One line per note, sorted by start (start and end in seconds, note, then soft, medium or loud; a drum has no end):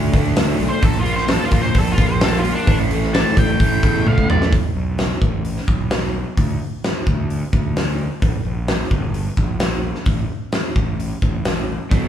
0.00 0.12 D3 medium
0.00 0.12 A3 medium
0.00 0.13 D4 medium
0.13 0.50 D2 medium
0.13 0.34 D3 medium
0.13 0.35 A3 medium
0.13 0.36 D4 loud
0.13 kick medium
0.13 open hi-hat medium
0.36 0.57 D3 medium
0.36 0.58 A3 loud
0.36 0.59 D4 loud
0.36 snare loud
0.36 open hi-hat medium
0.59 0.69 B1 loud
0.59 0.81 D3 loud
0.59 0.81 A3 medium
0.59 0.81 D4 medium
0.59 open hi-hat medium
0.69 0.83 C5 medium
0.81 1.37 A#1 loud
0.81 1.03 A#2 loud
0.81 1.03 F3 loud
0.81 1.04 A#3 loud
0.81 0.99 A4 loud
0.81 kick loud
0.81 open hi-hat medium
0.99 1.14 F4 medium
1.04 1.25 A#2 medium
1.04 1.26 F3 medium
1.04 1.27 A#3 loud
1.04 open hi-hat medium
1.16 1.31 C5 medium
1.16 snare soft
1.27 1.49 A#2 loud
1.27 1.50 F3 medium
1.27 1.50 A#3 loud
1.27 1.45 A4 medium
1.27 snare loud
1.27 open hi-hat medium
1.45 1.60 F4 medium
1.50 1.72 A#2 medium
1.50 1.70 A#2 loud
1.50 1.73 F3 loud
1.50 1.73 A#3 medium
1.50 kick medium
1.50 open hi-hat medium
1.62 1.78 C5 medium
1.73 1.93 A#1 loud
1.73 1.95 A#2 loud
1.73 1.96 F3 loud
1.73 1.97 A#3 loud
1.73 kick medium
1.73 open hi-hat medium
1.78 1.91 A4 medium
1.92 2.06 F4 medium
1.96 2.52 A#1 medium
1.96 2.20 A#2 medium
1.96 2.20 F3 medium
1.96 2.21 A#3 loud
1.96 kick medium
1.96 open hi-hat medium
2.08 2.22 C5 medium
2.21 2.43 A#2 loud
2.21 2.44 F3 loud
2.21 2.44 A#3 loud
2.21 2.38 A4 medium
2.21 snare loud
2.21 open hi-hat medium
2.38 2.53 F4 medium
2.45 2.66 A#2 medium
2.45 2.66 F3 medium
2.45 2.67 A#3 medium
2.45 open hi-hat medium
2.55 2.76 D4 loud
2.67 3.22 A1 loud
2.67 2.90 A2 loud
2.67 2.90 E3 medium
2.67 2.91 A3 loud
2.67 kick loud
2.67 open hi-hat medium
2.91 3.13 A2 medium
2.91 3.13 E3 medium
2.91 3.14 A3 loud
2.91 open hi-hat medium
3.03 snare soft
3.14 3.35 A2 loud
3.14 3.36 E3 loud
3.14 3.36 A3 loud
3.14 3.36 A5 loud
3.14 snare loud
3.14 open hi-hat medium
3.37 3.55 A1 loud
3.37 3.59 A2 medium
3.37 3.60 E3 medium
3.37 3.60 A3 loud
3.37 4.05 G5 loud
3.37 kick medium
3.37 open hi-hat medium
3.60 3.78 A1 loud
3.60 3.82 A2 medium
3.60 3.82 E3 loud
3.60 3.83 A3 medium
3.60 kick medium
3.60 open hi-hat medium
3.83 4.04 E2 medium
3.83 4.05 A2 medium
3.83 4.05 E3 medium
3.83 4.06 A3 medium
3.83 kick medium
3.83 open hi-hat medium
4.06 4.27 C#2 medium
4.06 4.27 A2 medium
4.06 4.28 E3 loud
4.06 4.28 A3 loud
4.06 4.29 F5 medium
4.06 high tom medium
4.18 kick medium
4.28 4.50 B1 medium
4.28 4.51 A2 medium
4.28 4.51 E3 medium
4.28 4.51 A3 medium
4.28 4.52 D5 medium
4.28 mid tom loud
4.42 snare medium
4.52 4.61 B1 medium
4.52 kick loud
4.52 open hi-hat medium
4.75 5.12 B1 loud
4.98 snare medium
4.98 open hi-hat medium
5.22 5.58 A1 loud
5.22 kick medium
5.45 open hi-hat medium
5.57 snare soft
5.68 6.22 B1 medium
5.68 kick medium
5.91 snare loud
5.91 open hi-hat medium
6.37 6.55 D2 medium
6.37 kick loud
6.37 open hi-hat medium
6.84 snare loud
6.84 open hi-hat soft
7.07 7.43 D2 medium
7.07 kick medium
7.30 open hi-hat medium
7.53 8.07 D2 medium
7.53 kick medium
7.76 snare loud
7.76 open hi-hat medium
8.22 8.31 A#1 medium
8.22 kick loud
8.22 open hi-hat medium
8.45 8.81 A#1 loud
8.68 snare loud
8.68 open hi-hat soft
8.91 9.27 G1 loud
8.91 kick medium
9.14 open hi-hat medium
9.37 9.92 A#1 medium
9.37 kick medium
9.60 snare loud
9.60 open hi-hat medium
9.95 snare soft
10.06 10.25 A1 loud
10.06 kick loud
10.06 open hi-hat medium
10.52 snare loud
10.52 open hi-hat soft
10.76 11.12 A1 medium
10.76 kick medium
11.00 open hi-hat medium
11.22 11.76 A1 medium
11.22 kick medium
11.45 snare loud
11.45 open hi-hat medium
11.90 12.00 B1 medium
11.90 12.08 B2 medium
11.90 12.08 F#3 loud
11.90 12.08 B3 loud
11.90 kick loud
11.90 open hi-hat medium